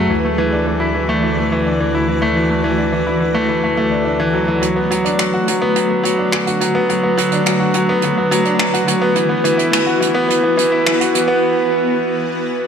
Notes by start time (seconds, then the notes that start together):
Already playing: F#3 A3 C#4 F#4
0.09 D2 E3 F#4 D5
0.25 A3
0.38 E3
0.52 D4
0.67 E3
0.80 E4
0.95 E3
1.09 A3
1.23 E3
1.38 A3
1.52 E3
1.67 D4
1.80 E3
1.95 E4
2.08 E3
2.22 A3
2.36 E3
2.50 A3
2.64 E3
2.78 D4
2.92 E3
3.07 E4
3.20 E3
3.34 A3
3.49 E3
3.64 A3
3.77 A3
3.91 D4
4.05 D4
4.20 E3
4.34 F#3
4.48 E3
4.62 D3 F#3 A3 F#4 B4, closed hi-hat
4.76 B3
4.91 F#3, closed hi-hat
5.05 D4, closed hi-hat
5.19 F#3, finger snap, closed hi-hat
5.34 F#4
5.48 F#3, closed hi-hat
5.62 B3
5.76 F#3, closed hi-hat
5.90 B3
6.04 F#3, closed hi-hat
6.18 D4
6.32 F#3, finger snap
6.47 F#4, closed hi-hat
6.61 F#3, closed hi-hat
6.75 B3
6.89 F#3, closed hi-hat
7.03 B3
7.18 F#3, closed hi-hat
7.32 D4, closed hi-hat
7.46 F#3, finger snap, closed hi-hat
7.60 F#4
7.74 F#3, closed hi-hat
7.89 B3
8.02 F#3, closed hi-hat
8.18 B3
8.31 F#3, closed hi-hat
8.45 D4, closed hi-hat
8.59 F#3, finger snap
8.74 F#4, closed hi-hat
8.88 F#3, closed hi-hat
9.02 B3
9.15 E3 B3, closed hi-hat
9.29 B3
9.44 E3, closed hi-hat
9.57 E4, closed hi-hat
9.72 E3, finger snap, closed hi-hat
9.86 F#4
10.00 E3, closed hi-hat
10.15 B3
10.29 E3, closed hi-hat
10.43 B3
10.57 E3, closed hi-hat
10.72 E4
10.86 E3, finger snap
11.01 F#4, closed hi-hat
11.14 E3, closed hi-hat
11.28 B3